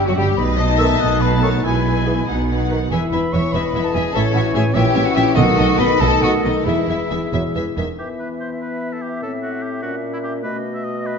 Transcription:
Already playing: E5
0.06 F#2 F#3 F#4 F#5
0.10 F#4
0.16 G1 G2 G3 G4 G5
0.37 B1 B2 A3 D#4 B4 D#5 B5
0.58 B3 D#4 D#5 A5 D#6
0.77 D#3 A4 E5 E6
0.99 B1 B2 D#5 F#5 D#6
1.20 B3 D#4 B4 A5 B5
1.42 D#3 A4 C#5 C#6
1.63 B1 B2 G#3 B3 E4 B4 G#5 B5
1.85 B3 E4 G#5
2.06 E3 G#4
2.27 B1 B2 B3 D#4 F#5
2.48 B3 D#4 F#5
2.69 D#3 B4
2.91 E1 E2 E3 B3 E4 G#4 B4 E5 G#5
3.11 E1 E2 B3 E4 B4 E5 B5
3.33 E1 E2 B3 E4 C#5 E5 C#6
3.52 E1 E2 E3 B3 E4 B4 D#5 E5 B5
3.74 E1 E2 B3 E4 E5
3.84 A4 A5
3.92 E1 E2 B3 E4 G#4 E5 G#5
4.13 A1 A2 E3 C#4 E4 A4 C#5 E5 A5
4.33 A1 A2 C#4 E4 F#4 E5 F#5
4.53 A1 A2 C#4 E4 G#4 E5 G#5
4.73 A#1 A#2 E3 C#4 E4 G4 C#5 E5 G5
4.94 A#1 A#2 C#4 E4 E5
5.05 F#4 F#5
5.15 A#1 A#2 C#4 E4 G4 E5 G5
5.35 B1 B2 D#3 A3 B3 D#4 F#4 A4 D#5 F#5
5.56 B1 B2 B3 A4 D#5
5.78 B1 B2 B3 A4 B4 D#5 B5
5.99 B1 B2 D#3 A3 B3 D#4 A4 D#5 A5
6.21 B1 B2 B3 F#4 A4 D#5 F#5
6.43 B1 B2 B3 D#4 A4 D#5
6.65 E1 E2 E3 G#3 B3 E4 G#4 E5
6.88 E1 E2 B3 G#4 E5
7.11 E1 E2 B3 G#4 E5
7.33 E1 E2 F#3 B3 G#4 E5
7.55 E1 E2 E3 B3 G#4 E5
7.77 E1 E2 D#3 B3 G#4 E5
7.98 E3 B3 G4 E5
8.19 B4
8.41 C5
8.61 B4
8.93 A4
9.02 G4
9.22 A2 C4 A4
9.43 F#4
9.63 G4
9.82 A#2 C#4 F#4
10.14 E4
10.24 G4
10.43 B2 A3 B4 D#5
10.74 E5
10.84 D#5
11.07 B4

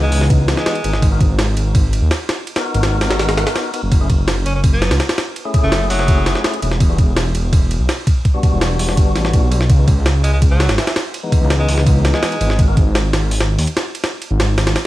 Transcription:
Already playing: C#2 E3 G#3 B3 D#4
0.03 G#3
0.12 C#2, open hi-hat
0.21 snare
0.30 kick, ride
0.48 snare, ride
0.57 G#3, snare
0.66 snare, ride
0.75 ride
0.84 G#1 E3 G#3 B3 D#4, ride
0.93 snare
1.02 kick, ride
1.11 B3 D#4 F#4 A#4
1.20 kick, ride
1.29 G#1
1.39 snare, ride
1.57 G#1, ride
1.75 kick, ride
1.93 ride
2.02 D#2
2.11 snare, ride
2.29 snare, ride
2.47 ride
2.56 B3 D#4 F#4 A#4, snare, ride
2.74 G#1, ride
2.83 snare, ride
3.01 G#1, snare, ride
3.10 snare, ride
3.19 snare, ride
3.29 snare, ride
3.37 snare, ride
3.47 snare, ride
3.56 snare, ride
3.74 B3 D#4 F#4 A#4, ride
3.83 F#1
3.92 kick, ride
4.01 A3 C#4 E4 G#4
4.10 kick, ride
4.19 F#1
4.28 snare, ride
4.46 F#1 C#4, ride
4.55 C#4
4.64 kick, ride
4.73 B3
4.82 snare, ride
4.91 C#2, snare, ride
5.00 snare, ride
5.09 snare, ride
5.18 snare, ride
5.36 ride
5.45 A3 C#4 E4 G#4
5.54 kick, ride
5.63 F#1 A3
5.72 snare, ride
5.90 F#1 F#3, open hi-hat
5.99 snare
6.08 kick, ride
6.26 snare, ride
6.35 snare
6.44 snare, ride
6.54 ride
6.62 E1 A3 C#4 E4 G#4, ride
6.71 snare
6.80 kick, ride
6.90 G3 B3 D4 F#4
6.98 kick, ride
7.07 E1
7.16 snare, ride
7.34 E1, ride
7.53 kick, ride
7.71 ride
7.80 B1
7.89 snare, ride
8.07 kick, ride
8.25 kick, ride
8.34 G3 B3 D4 F#4
8.43 kick, ride
8.52 E1
8.61 snare, ride
8.79 E1, open hi-hat
8.89 snare
8.97 G1, kick, ride
9.15 A1, snare, ride
9.25 snare
9.33 kick, ride
9.43 B1
9.52 G3 B3 D4 F#4, ride
9.61 snare
9.70 C#2, kick, ride
9.79 E3 G#3 B3 D#4
9.88 kick, ride
9.97 C#2
10.06 snare, ride
10.24 C#2 G#3, ride
10.33 G#3
10.42 kick, ride
10.51 F#3
10.60 snare, ride
10.69 G#1, snare, ride
10.78 E3, snare, ride
10.87 E3, snare, ride
10.96 snare, ride
11.14 ride
11.23 E3 G#3 B3 D#4
11.32 kick, ride
11.41 C#2
11.50 snare, ride
11.59 G#3
11.69 C#2, open hi-hat
11.78 snare
11.87 kick, ride
12.05 snare, ride
12.14 G#3, snare
12.23 snare, ride
12.32 ride
12.41 G#1 E3 G#3 B3 D#4, ride
12.50 snare
12.59 kick, ride
12.68 B3 D#4 F#4 A#4
12.77 kick, ride
12.86 G#1
12.95 snare, ride
13.13 G#1, snare, ride
13.31 open hi-hat
13.41 snare, ride
13.58 D#2, open hi-hat
13.67 ride
13.77 snare, ride
13.95 ride
14.04 snare, ride
14.22 ride
14.31 G#1
14.40 snare, ride
14.58 G#1, snare, ride
14.67 snare, ride
14.76 snare, ride

